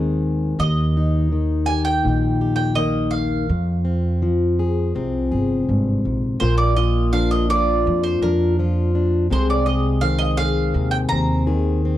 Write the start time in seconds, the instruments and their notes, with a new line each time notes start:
Already playing: upright bass D#2, steel-string acoustic guitar D#3 G#3 C4 G#4, mandolin G#5
0.59 upright bass D#2, steel-string acoustic guitar D#2, mandolin D#5
0.97 steel-string acoustic guitar D#4
1.32 steel-string acoustic guitar D#3
1.66 steel-string acoustic guitar G4, mandolin G#5
1.85 mandolin G5
2.04 upright bass A#1, steel-string acoustic guitar A#2 D#4
2.41 steel-string acoustic guitar G4
2.56 mandolin G5
2.75 steel-string acoustic guitar D#3 A#3, mandolin D#5
3.11 mandolin F5
3.49 upright bass F2, steel-string acoustic guitar F2
3.85 steel-string acoustic guitar C4
4.22 steel-string acoustic guitar F3
4.59 steel-string acoustic guitar G#4
4.95 upright bass C2, steel-string acoustic guitar C3 C4
5.32 upright bass G1, steel-string acoustic guitar G#4
5.69 upright bass G#1, steel-string acoustic guitar G2
6.05 upright bass A#1, steel-string acoustic guitar G#2
6.40 upright bass A#1, steel-string acoustic guitar A#2 A#3 F4, mandolin C5
6.58 mandolin D5
6.76 steel-string acoustic guitar F4, mandolin D#5
7.13 steel-string acoustic guitar F3 D4, mandolin F5
7.31 mandolin D#5
7.50 steel-string acoustic guitar F4, mandolin D5
7.86 steel-string acoustic guitar F2, upright bass F2
8.04 mandolin C5
8.21 upright bass F2, steel-string acoustic guitar D4, mandolin A#4
8.59 steel-string acoustic guitar F3 F4
8.95 steel-string acoustic guitar D4
9.30 upright bass C2, steel-string acoustic guitar C3 G#3 C4 G#4, mandolin C5
9.50 mandolin D5
9.66 steel-string acoustic guitar G#4, mandolin D#5
10.01 steel-string acoustic guitar D#3 C4, mandolin F5
10.19 mandolin D#5
10.37 steel-string acoustic guitar G#4, mandolin F5
10.74 upright bass D#2, steel-string acoustic guitar C3
10.91 mandolin G5
11.09 upright bass D#2, steel-string acoustic guitar C4, mandolin A#5
11.47 steel-string acoustic guitar D#3 G#4
11.85 steel-string acoustic guitar C4